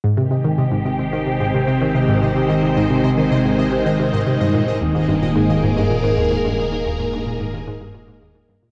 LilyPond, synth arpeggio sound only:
\new Staff \with { instrumentName = "Synth arpeggio sound" } { \clef bass \time 4/4 \key aes \major \tempo 4 = 110 aes,16 c16 c16 ees16 c16 aes,16 c16 c16 ees16 c16 aes,16 c16 c16 ees16 c16 aes,16 | c16 c16 ees16 c16 aes,16 c16 c16 ees16 c16 aes,16 c16 c16 ees16 c16 aes,16 c16 | g,16 bes,16 aes,16 ees,16 aes,16 g,16 bes,16 aes,16 ees,16 aes,16 g,16 bes,16 aes,16 ees,16 aes,16 g,16 | bes,16 aes,16 ees,16 aes,16 g,16 bes,16 aes,16 ees,16 aes,16 g,16 bes,16 aes,16 ees,16 aes,16 g,16 bes,16 | }